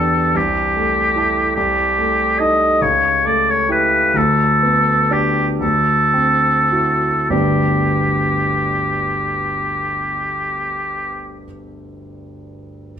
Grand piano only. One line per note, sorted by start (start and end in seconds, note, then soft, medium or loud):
0.00 0.32 E2 soft
0.00 0.20 B3 soft
0.00 0.31 D4 soft
0.00 0.32 G4 soft
0.35 1.52 C2 soft
0.76 1.40 A3 soft
1.16 1.52 E4 soft
1.16 1.53 A4 soft
1.57 2.78 C2 soft
1.98 2.65 A3 soft
2.40 2.78 D#4 soft
2.40 2.78 A4 soft
2.82 4.11 C#2 soft
3.25 3.96 A3 soft
3.69 4.11 E4 soft
3.69 4.11 G4 soft
4.14 5.57 D2 soft
4.63 5.42 B3 soft
5.11 5.58 D4 soft
5.11 5.58 G4 soft
5.60 7.27 D2 soft
6.14 7.07 C4 soft
6.72 7.27 E4 soft
6.72 7.27 F#4 soft
7.30 11.43 G1 soft
7.30 11.44 D2 soft
7.30 11.44 G3 soft
7.30 11.45 B3 soft
7.30 11.45 D4 soft
7.30 11.45 G4 soft